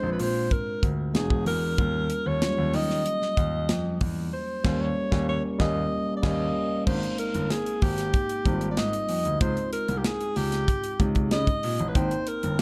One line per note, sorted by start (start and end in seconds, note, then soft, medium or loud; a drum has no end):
0.00 0.17 A#1 medium
0.00 1.14 G#3 medium
0.00 1.17 C4 medium
0.00 1.15 D4 medium
0.00 1.17 F4 medium
0.00 0.12 C5 loud
0.13 0.22 B4 medium
0.19 0.46 A#2 medium
0.19 0.54 C5 medium
0.19 open hi-hat medium
0.51 0.88 A#4 medium
0.51 kick medium
0.51 closed hi-hat medium
0.83 1.10 D2 medium
0.83 kick medium
0.83 closed hi-hat medium
1.14 1.41 E1 medium
1.14 1.68 G#3 medium
1.14 1.69 B3 medium
1.14 1.69 D4 medium
1.14 1.69 F#4 medium
1.14 1.45 G#4 medium
1.14 snare loud
1.14 closed hi-hat medium
1.30 kick medium
1.46 1.73 E2 medium
1.46 2.29 A#4 loud
1.46 open hi-hat medium
1.77 2.05 D#2 loud
1.77 2.32 G3 medium
1.77 2.32 A#3 medium
1.77 2.32 C#4 medium
1.77 2.33 F4 medium
1.77 kick loud
1.77 closed hi-hat medium
2.10 closed hi-hat medium
2.26 2.39 D#2 medium
2.26 2.77 C#5 loud
2.41 2.48 F#3 medium
2.41 3.50 A#3 medium
2.41 3.50 C#4 medium
2.41 3.50 F4 medium
2.41 snare loud
2.41 closed hi-hat medium
2.48 3.53 G3 medium
2.58 2.74 D#2 medium
2.73 3.01 D#3 medium
2.73 4.02 D#5 loud
2.73 open hi-hat medium
2.90 snare soft
3.06 closed hi-hat medium
3.22 snare soft
3.37 3.64 D#2 medium
3.37 kick loud
3.37 closed hi-hat medium
3.69 3.96 F2 medium
3.69 snare medium
3.69 closed hi-hat medium
4.01 4.28 E2 medium
4.01 kick medium
4.01 open hi-hat medium
4.33 4.83 C5 medium
4.64 4.86 D#2 loud
4.64 4.86 G3 loud
4.64 4.86 A#3 medium
4.64 4.86 C#4 loud
4.64 kick loud
4.64 snare loud
4.64 crash medium
4.81 5.28 C#5 loud
5.11 5.34 D#2 loud
5.11 5.33 G3 medium
5.11 5.33 A#3 loud
5.11 5.34 C#4 medium
5.11 kick medium
5.11 snare medium
5.29 5.43 C#5 medium
5.59 5.82 D#2 loud
5.59 5.81 G3 loud
5.59 5.81 A#3 loud
5.59 5.81 C#4 loud
5.59 6.13 D#5 loud
5.59 kick loud
5.59 snare loud
6.17 6.25 D5 medium
6.23 6.45 D#2 loud
6.23 6.45 G3 loud
6.23 6.45 A#3 loud
6.23 6.45 C#4 loud
6.23 6.86 D#5 loud
6.23 kick loud
6.23 snare loud
6.23 crash medium
6.86 7.00 G#1 loud
6.86 7.95 G#3 medium
6.86 7.95 A#3 medium
6.86 7.95 C4 medium
6.86 6.94 C#4 medium
6.86 7.16 C5 medium
6.86 kick loud
6.86 crash loud
6.94 7.99 D#4 medium
7.03 closed hi-hat medium
7.18 7.52 A#4 medium
7.18 closed hi-hat medium
7.34 7.48 G1 medium
7.34 closed hi-hat medium
7.50 7.84 G#4 medium
7.50 snare medium
7.50 closed hi-hat medium
7.66 closed hi-hat soft
7.82 8.09 G#1 medium
7.82 8.70 G4 loud
7.82 kick medium
7.82 open hi-hat medium
7.98 snare soft
7.98 closed hi-hat medium
8.14 kick medium
8.14 closed hi-hat medium
8.29 closed hi-hat medium
8.45 8.72 G#1 medium
8.45 9.27 G3 medium
8.45 9.27 A#3 medium
8.45 9.27 C4 medium
8.45 8.53 D#4 medium
8.45 kick medium
8.45 closed hi-hat medium
8.53 9.30 F4 medium
8.61 closed hi-hat soft
8.71 8.79 D5 medium
8.77 8.91 G#2 medium
8.77 9.41 D#5 loud
8.77 snare loud
8.77 closed hi-hat medium
8.93 closed hi-hat soft
9.09 9.23 F2 medium
9.09 open hi-hat medium
9.25 9.39 D2 medium
9.25 closed hi-hat soft
9.40 9.54 C#2 medium
9.40 10.49 G#3 medium
9.40 10.49 C4 medium
9.40 10.49 D#4 medium
9.40 10.49 F4 medium
9.40 9.71 C5 medium
9.40 kick loud
9.40 closed hi-hat medium
9.57 closed hi-hat medium
9.73 9.99 A#4 medium
9.73 closed hi-hat medium
9.88 10.02 C2 medium
9.88 closed hi-hat medium
9.98 10.06 G4 medium
10.04 10.38 G#4 loud
10.04 snare loud
10.04 closed hi-hat medium
10.21 closed hi-hat soft
10.36 10.63 C#2 medium
10.36 11.05 G4 loud
10.36 open hi-hat medium
10.52 snare soft
10.52 closed hi-hat medium
10.68 kick medium
10.68 closed hi-hat medium
10.84 closed hi-hat medium
11.00 11.27 C#2 medium
11.00 11.81 G#3 medium
11.00 11.81 C4 medium
11.00 11.81 D#4 medium
11.00 11.82 G4 medium
11.00 kick loud
11.00 closed hi-hat medium
11.15 kick medium
11.15 closed hi-hat soft
11.31 11.45 C#3 loud
11.31 11.90 D#5 loud
11.31 snare loud
11.31 closed hi-hat medium
11.47 kick medium
11.47 closed hi-hat medium
11.63 11.77 A#2 medium
11.63 open hi-hat medium
11.79 11.93 A1 medium
11.79 closed hi-hat medium
11.89 11.98 B4 medium
11.95 12.09 G#1 loud
11.95 12.62 A#3 medium
11.95 12.62 C4 medium
11.95 12.62 D#4 medium
11.95 12.30 C5 loud
11.95 12.62 G5 medium
11.95 kick loud
11.95 closed hi-hat medium
12.11 closed hi-hat medium
12.27 12.59 A#4 medium
12.27 closed hi-hat medium
12.43 12.57 G1 medium
12.43 closed hi-hat soft